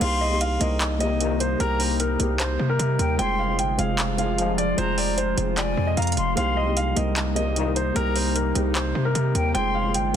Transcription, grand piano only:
0.01 F5
0.21 D#5
0.41 F5
0.61 D#5
1.00 D#5
1.40 C5
1.60 A#4
1.80 C5
2.00 A#4
2.20 A#4
2.39 C5
2.69 A#4
3.19 G5
3.39 F5
3.59 G5
3.79 F5
4.18 F5
4.58 D5
4.78 C5
4.98 D5
5.18 C5
5.37 C5
5.57 D5
5.87 D#5
5.97 F5
6.37 F5
6.57 D#5
6.77 F5
6.97 D#5
7.36 D#5
7.76 C5
7.96 A#4
8.16 C5
8.36 A#4
8.55 A#4
8.75 C5
9.05 A#4
9.55 G5
9.75 F5
9.95 G5

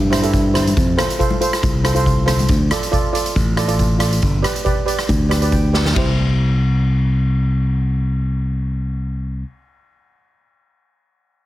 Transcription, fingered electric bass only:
Already playing: G2
0.77 F2
1.63 C2
2.49 D2
3.36 A1
4.23 G1
5.09 D2
5.96 C2

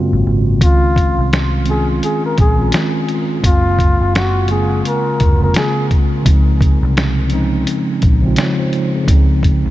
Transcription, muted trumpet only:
0.63 F4
1.70 G#4
2.04 G#4
2.26 A#4
2.40 G#4
3.46 F4
4.16 F#4
4.51 G#4
4.88 A#4
5.43 A#4
5.57 G#4

